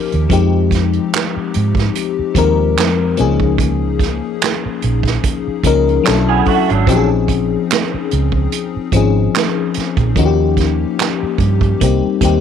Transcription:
0.00 0.29 F3 medium
0.00 0.32 A#3 medium
0.00 0.32 C#4 medium
0.00 0.31 D#4 medium
0.00 0.32 A#4 medium
0.12 0.28 D#2 medium
0.12 closed hi-hat soft
0.29 0.98 F2 medium
0.29 1.59 F3 medium
0.29 1.59 G#3 medium
0.29 1.59 C4 medium
0.29 1.60 D#4 medium
0.29 1.60 G4 medium
0.29 kick medium
0.29 closed hi-hat medium
0.71 kick medium
0.71 snare soft
0.71 closed hi-hat medium
0.93 closed hi-hat soft
1.13 snare medium
1.13 clap medium
1.13 closed hi-hat medium
1.37 muted fingered electric bass stroke soft
1.54 1.88 G#2 medium
1.54 closed hi-hat medium
1.75 kick medium
1.75 snare soft
1.75 closed hi-hat soft
1.95 closed hi-hat medium
2.19 muted fingered electric bass stroke soft
2.34 2.79 D#2 medium
2.34 3.16 F3 medium
2.34 3.17 G#3 medium
2.34 3.18 C4 medium
2.34 3.18 D#4 medium
2.34 3.19 A#4 medium
2.34 kick medium
2.34 closed hi-hat medium
2.78 3.21 F2 medium
2.78 snare medium
2.78 clap medium
2.78 closed hi-hat medium
3.17 4.19 C#2 medium
3.17 4.49 F3 medium
3.17 4.50 A#3 medium
3.17 4.50 C#4 medium
3.17 4.51 D#4 medium
3.17 4.51 G#4 medium
3.17 closed hi-hat medium
3.40 kick medium
3.58 kick loud
3.58 closed hi-hat medium
3.99 kick medium
3.99 snare soft
3.99 closed hi-hat medium
4.41 snare medium
4.41 clap medium
4.41 closed hi-hat medium
4.66 muted fingered electric bass stroke soft
4.82 5.17 A#1 medium
4.82 closed hi-hat medium
5.03 kick medium
5.03 snare soft
5.03 closed hi-hat soft
5.24 kick medium
5.24 closed hi-hat medium
5.48 muted fingered electric bass stroke soft
5.63 5.98 C#2 medium
5.63 6.05 F3 medium
5.63 6.05 A#3 medium
5.63 6.04 C#4 medium
5.63 6.06 D#4 medium
5.63 6.07 A#4 medium
5.63 kick medium
5.63 closed hi-hat medium
5.89 closed hi-hat soft
6.04 6.71 F#3 medium
6.04 6.72 C#4 medium
6.04 6.72 D4 medium
6.04 6.73 E4 medium
6.04 6.73 A4 medium
6.04 snare medium
6.04 clap medium
6.04 closed hi-hat medium
6.08 6.40 B1 medium
6.29 6.46 B3 medium
6.29 6.46 G#4 medium
6.45 6.68 A3 medium
6.45 6.68 F#4 medium
6.45 kick medium
6.45 open hi-hat soft
6.69 6.88 G#1 medium
6.69 7.08 F#3 medium
6.69 7.08 D4 medium
6.69 closed hi-hat soft
6.86 7.55 A#1 medium
6.86 8.16 F3 medium
6.86 8.16 C4 medium
6.86 8.17 C#4 medium
6.86 8.17 D#4 medium
6.86 6.96 G4 medium
6.86 kick loud
6.86 closed hi-hat medium
6.96 8.21 G#4 medium
7.28 kick medium
7.28 closed hi-hat medium
7.70 snare medium
7.70 clap medium
7.70 closed hi-hat medium
7.94 muted fingered electric bass stroke soft
8.11 8.45 C#2 loud
8.11 closed hi-hat medium
8.32 kick medium
8.52 closed hi-hat medium
8.76 muted fingered electric bass stroke soft
8.92 9.27 G#1 medium
8.92 9.90 F3 medium
8.92 9.91 C4 medium
8.92 9.91 C#4 medium
8.92 9.92 D#4 medium
8.92 kick medium
8.92 closed hi-hat medium
8.96 9.92 G#4 medium
9.35 snare medium
9.35 clap medium
9.35 closed hi-hat medium
9.74 muted fingered electric bass stroke soft
9.74 snare soft
9.74 closed hi-hat medium
9.97 10.13 A#1 medium
9.97 kick loud
9.97 closed hi-hat soft
10.16 10.83 D#2 medium
10.16 11.45 F3 medium
10.16 11.45 A#3 medium
10.16 11.46 C#4 medium
10.16 11.46 D#4 medium
10.16 10.24 F#4 medium
10.16 kick loud
10.16 closed hi-hat medium
10.26 11.50 G4 medium
10.57 kick medium
10.57 snare soft
10.57 closed hi-hat soft
10.99 snare medium
10.99 clap medium
10.99 closed hi-hat medium
11.23 muted fingered electric bass stroke soft
11.38 11.73 G2 medium
11.38 kick medium
11.38 closed hi-hat medium
11.61 kick medium
11.61 closed hi-hat soft
11.80 12.00 C2 medium
11.80 12.14 G3 medium
11.80 12.14 A#3 medium
11.80 12.15 C4 medium
11.80 12.15 D#4 medium
11.80 12.16 G4 medium
11.80 kick medium
11.80 closed hi-hat medium
12.05 muted fingered electric bass stroke soft
12.21 12.40 D#2 medium
12.21 12.40 G3 medium
12.21 12.40 A#3 medium
12.21 12.40 C4 medium
12.21 12.40 D#4 medium
12.21 12.40 G4 medium
12.21 kick medium
12.21 closed hi-hat medium

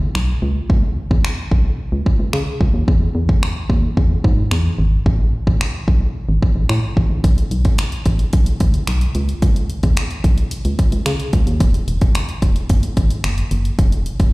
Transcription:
0.15 0.34 B1 medium
0.15 finger snap loud
0.42 0.62 C#2 loud
0.70 0.98 C#2 loud
0.70 kick loud
1.11 1.20 E2 medium
1.11 kick medium
1.25 finger snap loud
1.51 1.71 B1 medium
1.51 kick medium
1.92 2.02 C#2 medium
2.06 kick medium
2.19 2.29 C#2 medium
2.33 2.43 C#3 medium
2.33 finger snap loud
2.61 2.70 C#2 medium
2.61 kick medium
2.74 2.84 D#2 medium
2.88 3.07 E2 loud
2.88 kick loud
3.15 3.34 E2 loud
3.29 kick medium
3.43 finger snap loud
3.70 3.89 D#2 medium
3.70 kick medium
3.97 4.16 E2 loud
3.97 kick medium
4.24 4.43 G#2 medium
4.24 kick medium
4.51 4.71 E2 medium
4.51 finger snap loud
4.79 4.98 G#1 medium
5.06 5.35 A1 loud
5.06 kick loud
5.47 5.57 A1 medium
5.47 kick medium
5.61 finger snap loud
5.88 6.07 B1 medium
5.88 kick medium
6.29 6.38 G#1 medium
6.42 kick medium
6.56 6.66 A1 medium
6.69 6.79 A2 loud
6.69 finger snap loud
6.97 7.06 A1 loud
6.97 kick medium
7.10 7.20 A1 medium
7.24 7.43 B1 loud
7.24 kick loud
7.24 closed hi-hat medium
7.38 closed hi-hat medium
7.51 7.71 B1 medium
7.51 closed hi-hat medium
7.65 kick medium
7.65 closed hi-hat medium
7.78 finger snap loud
7.78 closed hi-hat loud
7.92 closed hi-hat medium
8.06 8.25 A1 medium
8.06 kick medium
8.06 closed hi-hat medium
8.19 closed hi-hat soft
8.33 8.53 B1 medium
8.33 kick medium
8.33 closed hi-hat loud
8.46 closed hi-hat medium
8.60 8.80 D2 medium
8.60 kick loud
8.60 closed hi-hat medium
8.74 closed hi-hat medium
8.87 9.07 B1 medium
8.87 finger snap loud
8.87 closed hi-hat medium
9.01 closed hi-hat medium
9.15 9.34 C#2 medium
9.15 closed hi-hat medium
9.29 closed hi-hat medium
9.42 9.71 C#2 loud
9.42 kick loud
9.42 closed hi-hat medium
9.56 closed hi-hat medium
9.70 closed hi-hat medium
9.83 9.93 E2 medium
9.83 kick loud
9.83 closed hi-hat medium
9.97 finger snap loud
9.97 closed hi-hat medium
10.11 closed hi-hat medium
10.24 10.43 B1 medium
10.24 kick medium
10.24 closed hi-hat medium
10.38 closed hi-hat medium
10.51 closed hi-hat loud
10.65 10.75 C#2 medium
10.65 closed hi-hat medium
10.79 kick medium
10.79 closed hi-hat medium
10.92 11.02 C#2 loud
10.92 closed hi-hat medium
11.06 11.16 C#3 medium
11.06 finger snap loud
11.06 closed hi-hat medium
11.20 closed hi-hat medium
11.33 11.43 C#2 loud
11.33 kick medium
11.33 closed hi-hat medium
11.47 11.62 D#2 loud
11.47 closed hi-hat soft
11.60 11.80 E1 loud
11.60 kick loud
11.60 closed hi-hat medium
11.74 closed hi-hat medium
11.88 12.07 E1 loud
11.88 closed hi-hat medium
12.01 kick loud
12.01 closed hi-hat medium
12.15 finger snap loud
12.15 closed hi-hat medium
12.29 closed hi-hat soft
12.42 12.62 E1 medium
12.42 kick medium
12.42 closed hi-hat medium
12.56 closed hi-hat medium
12.69 12.89 F#1 loud
12.69 kick medium
12.69 closed hi-hat loud
12.83 closed hi-hat medium
12.97 13.16 G#1 medium
12.97 kick medium
12.97 closed hi-hat medium
13.10 closed hi-hat medium
13.24 13.43 F#1 medium
13.24 finger snap loud
13.24 closed hi-hat medium
13.38 closed hi-hat medium
13.51 13.71 F#1 medium
13.51 closed hi-hat medium
13.65 closed hi-hat soft
13.79 14.08 E1 loud
13.79 kick loud
13.79 closed hi-hat medium
13.92 closed hi-hat medium
14.06 closed hi-hat medium
14.20 14.29 E1 medium
14.20 kick loud
14.20 closed hi-hat medium

